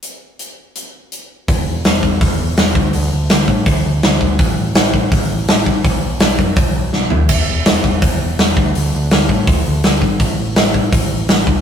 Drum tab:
CC |--------|--------|--------|--------|
HH |x-x-x-x-|o-o-o-o-|o-o-o-o-|o-o-o-o-|
SD |--------|--o---o-|--o---o-|--o---o-|
FT |--------|--------|--------|--------|
BD |--------|o--oo--o|---oo--o|o--oo--o|

CC |--------|x-------|--------|--------|
HH |o-o-o---|o-o-o-o-|o-o-o-o-|o-o-o-o-|
SD |--o---o-|--o---o-|--o---o-|--o---o-|
FT |-------o|--------|--------|--------|
BD |o--oo---|o--oo--o|---oo--o|o--oo--o|